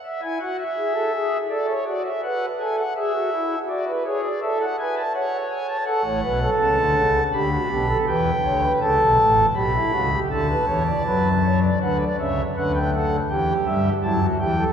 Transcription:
<<
  \new Staff \with { instrumentName = "Pipe organ" } { \time 4/4 \key d \major \tempo 4 = 81 << { e''16 gis''16 fis''16 e''4~ e''16 d''16 cis''16 d''16 e''16 fis''8 gis''16 fis''16 | e''4 d''16 b'16 cis''16 d''16 e''16 fis''16 gis''16 a''16 fis''8 gis''16 a''16 | fis''4 a''4 b''4 g''4 | a''4 b''4 a''2 |
\key b \minor fis''16 d''16 e''8 fis''16 g''16 fis''8 g''8 e''8 a''8 g''8 | } \\ { r16 e'16 fis'8 gis'16 a'16 gis'8 a'8 fis'8 b'8 a'8 | gis'16 fis'16 e'8 fis'8 gis'8 a'8 b'8 cis''4 | a'16 cis''16 b'16 a'4~ a'16 g'16 fis'16 g'16 a'16 b'8 cis''16 b'16 | a'4 g'16 e'16 fis'16 g'16 a'16 b'16 cis''16 d''16 b'8 cis''16 d''16 |
b'8 cis''8 b'8 a'8 g'4 e'16 fis'16 g'16 a'16 | } >> }
  \new Staff \with { instrumentName = "Pipe organ" } { \clef bass \time 4/4 \key d \major r1 | r1 | r16 <a,, a,>16 <b,, b,>8 <cis, cis>16 <d, d>16 <cis, cis>8 <d, d>8 <b,, b,>8 <e, e>8 <d, d>8 | <cis, cis>16 <b,, b,>16 <a,, a,>8 <b,, b,>8 <cis, cis>8 <d, d>8 <e, e>8 <fis, fis>4 |
\key b \minor <d, d>8 <cis, cis>8 <d, d>4 <e, e>8 <g, g>8 <fis, fis>8 <e, e>8 | }
>>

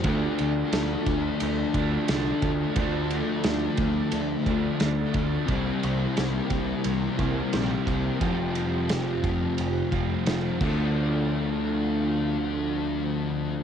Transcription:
<<
  \new Staff \with { instrumentName = "String machine" } { \time 4/4 \key d \minor \tempo 4 = 88 << { <d'' a''>1~ | <d'' a''>1 | <c'' g''>1~ | <c'' g''>2.~ <c'' g''>8 <d' f' a' f''>8~ |
<d' f' a' f''>1 | } \\ { <f' a'>1~ | <f' a'>1 | <e' bes'>1 | <f' g'>2.~ <f' g'>8 r8 |
r1 | } >> }
  \new Staff \with { instrumentName = "Overdriven electric guitar" } { \clef bass \time 4/4 \key d \minor <d f a d'>2~ <d f a d'>8 <d f a d'>8 <d f a d'>4 | <d f a d'>2~ <d f a d'>8 <d f a d'>8 <d f a d'>4 | <c g bes e'>2~ <c g bes e'>8 <c g bes e'>8 <c g bes e'>4 | <f g c' f'>2~ <f g c' f'>8 <f g c' f'>8 <f g c' f'>8 <d f a d'>8~ |
<d f a d'>1 | }
  \new Staff \with { instrumentName = "Distorted electric guitar" } { \clef bass \time 4/4 \key d \minor <d a d'>1 | <d a d'>1 | <c g c'>1 | <f, c f>2.~ <f, c f>8 <d a d'>8~ |
<d a d'>1 | }
  \new Staff \with { instrumentName = "Picked electric bass" } { \clef bass \time 4/4 \key d \minor d,8 d,8 d,8 d,8 d,8 d,8 c,8 d,8 | d,4 d,8 d,8 d,8 d,8 d,8 d,8 | c,8 c,8 c,8 c,8 c,8 c,8 bes,,8 c,8 | f,,4 f,,8 f,,8 f,,8 f,,8 f,,8 d,8~ |
d,1 | }
  \new DrumStaff \with { instrumentName = "Drums" } \drummode { \time 4/4 <bd cymr>8 cymr8 <cymr sn>8 <bd cymr>8 cymr8 <bd cymr>8 <cymr sn>8 <bd cymr>8 | <bd cymr>8 cymr8 <cymr sn>8 <bd cymr>8 cymr8 <bd cymr>8 <cymr sn>8 <bd cymr>8 | <bd cymr>8 cymr8 <cymr sn>8 <bd cymr>8 cymr8 <bd cymr>8 <cymr sn>8 <bd cymr>8 | <bd cymr>8 cymr8 <cymr sn>8 <bd cymr>8 cymr8 <bd cymr>8 <cymr sn>8 <cymc bd>8 |
r4 r4 r4 r4 | }
>>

